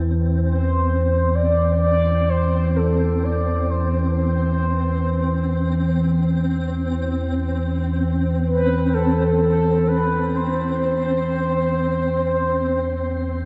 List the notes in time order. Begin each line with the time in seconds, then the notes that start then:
Already playing: E2 E3 C4
0.39 C5
1.35 D5
1.82 D5
2.29 C5
2.76 A4
3.23 D5
3.70 C5
4.17 C5
8.46 B4
8.94 A4
9.41 A4
9.87 B4
10.36 C5